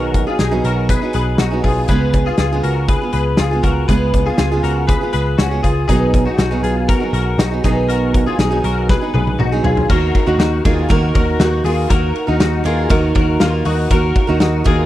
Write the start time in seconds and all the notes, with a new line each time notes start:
Already playing: B1 B2 D#3 F#3 B3 D#4 F#4 G#4 A#4
0.14 kick, closed hi-hat
0.27 F#3 B3 D#4 F4 G#4
0.39 B1 D#4 G#4, snare, closed hi-hat
0.51 B2 D#3 F#3 B3 D#4 G#4
0.64 B1 F#4 A#4, closed hi-hat
0.89 G#4 B4, kick, closed hi-hat
1.02 F#3 B3 D#4 G#4
1.13 B1 G#4 B4, closed hi-hat
1.38 B1 D#4 F#4, snare, closed hi-hat
1.51 F#3 B3 D#4 G#4
1.63 B1 F4 G#4, kick, open hi-hat
1.88 C#2 C#3 G#3 B3 F4 G#4 B4, kick, closed hi-hat
2.13 kick, closed hi-hat
2.26 B3 F4 G#4
2.38 C#2 F4 G#4, snare, closed hi-hat
2.53 C#3 G#3 B3 F4 G#4
2.63 C#2 F#4 A#4, closed hi-hat
2.88 G#4 B4, kick, closed hi-hat
3.01 B3 F4 G#4
3.13 C#2 G#4 B4, closed hi-hat
3.37 C#2 F4 G#4, snare, closed hi-hat
3.51 B3 F4 G#4
3.63 C#2 F#4 A#4, kick, closed hi-hat
3.88 C#2 C#3 G#3 B3 F4 G#4 B4, kick, closed hi-hat
4.14 kick, closed hi-hat
4.26 B3 F4 G#4
4.38 C#2 F4 G#4, snare, closed hi-hat
4.52 C#3 G#3 B3 F4 G#4
4.63 C#2 F#4 A#4, closed hi-hat
4.87 G#4 B4, kick, closed hi-hat
5.01 B3 F4 G#4
5.13 C#2 G#4 B4, closed hi-hat
5.38 C#2 C#4 F#4, snare, closed hi-hat
5.51 B3 F4 G#4
5.63 C#2 F4 G#4, kick, closed hi-hat
5.88 B1 B2 D#3 F#3 B3 D#4 G#4, kick, closed hi-hat
6.14 kick, closed hi-hat
6.25 F#3 B3 D#4 F#4 G#4
6.38 B1 D#4 F#4, snare, closed hi-hat
6.51 B2 D#3 F#3 B3 D#4 G#4
6.63 B1 F4 G#4, closed hi-hat
6.88 F#4 A#4, kick, closed hi-hat
7.00 F#3 B3 D#4 G#4
7.13 B1 F#4 A#4, closed hi-hat
7.38 B1 D#4 F#4, snare, closed hi-hat
7.51 F#3 B3 D#4 G#4
7.64 B1 B2 D#3 F#3 B3 D#4 G#4, kick, closed hi-hat
7.89 F#4 A#4, closed hi-hat
8.14 kick, closed hi-hat
8.26 F#3 B3 D#4 F4 G#4
8.39 B1 D#4 G#4, snare, closed hi-hat
8.51 B2 D#3 F#3 B3 D#4 G#4
8.64 B1 F#4 A#4, closed hi-hat
8.89 G#4 B4, kick, snare
9.01 F#3 B3 D#4 G#4
9.14 B1 G#4 B4, high tom
9.27 high tom
9.39 B1 D#4 F#4, mid tom
9.52 F#3 B3 D#4 G#4
9.64 B1 F4 G#4, floor tom
9.77 floor tom
9.90 D#2 A#3 D#4 F#4 A#4, kick, crash
10.15 kick, ride
10.26 D#2 D#3 A#3 D#4 F#4 A#4
10.39 D#2 D#4 F#4, snare, ride
10.65 D#2 D#3 A#3 D#4 F4 F#4 G#4 A#4, kick, ride
10.89 D#2 D#3 A#3 D#4 F#4 A#4, kick, ride
11.15 D#2 F#4 A#4, kick, ride
11.40 D#2 A#3 D#4 F#4 A#4, snare, ride
11.64 D#2 A#3 D#4 F4 F#4 G#4 A#4, open hi-hat, ride
11.90 D#2 A#3 D#4 F#4 A#4, kick, hi-hat pedal, ride
12.15 ride
12.27 D#2 D#3 A#3 D#4 F#4 A#4
12.40 D#2 D#4 F#4, snare, ride
12.64 D#2 D#3 A#3 D#4 F4 F#4 G#4 A#4, ride
12.89 D#2 D#3 A#3 D#4 F#4 A#4, kick, ride
13.15 D#2 F#4 A#4, kick, ride
13.40 D#2 A#3 D#4 F4 F#4 A#4, snare, ride
13.65 D#2 A#3 D#4 F#4 A#4, open hi-hat, ride
13.90 D#2 A#3 D#4 F#4 A#4, kick, hi-hat pedal, ride
14.15 kick, ride
14.27 D#2 D#3 A#3 D#4 F#4 A#4
14.40 D#2 D#4 F#4, snare, ride
14.64 D#2 D#3 A#3 D#4 F4 F#4 G#4 A#4, kick, ride